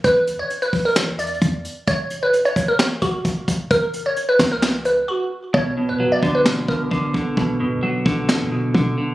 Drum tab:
HH |x-----x-----x--x--o-----x-----x-x-x-x-----x-----|x-----x-----x--x--x-----x-----x-----x-----x-----|x-----x-----x-----x-----x-----x-----------------|------------------------------------------------|
SD |------------------------o-----------------------|------------------------o-----------------------|------------------o-----o-----------------------|------------------------o-----------------------|
BD |o-----------------o-----------------o-----------|o-----------------o-----------o-----o-----o-----|o-----------------o-----------------------------|o-----------------o-----------o-----o-----o-----|

HH |------------------------------------------------|
SD |------------------------o-----------------------|
BD |o-----------------o-----------------o-----------|